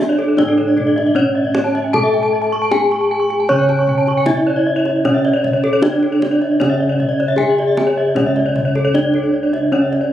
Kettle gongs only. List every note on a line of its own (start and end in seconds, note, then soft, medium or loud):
0.00 0.37 C#2 medium
0.00 1.12 C#4 soft
0.39 2.68 A2 medium
1.94 4.24 A4 soft
2.72 2.80 D4 soft
3.50 5.80 C#3 medium
4.28 4.36 D4 soft
5.06 7.36 C#4 soft
5.84 5.92 D4 soft
6.62 8.91 C#3 medium
7.40 7.48 D4 soft
8.17 10.13 C#4 soft
8.22 10.13 C#2 medium
8.96 9.04 D4 soft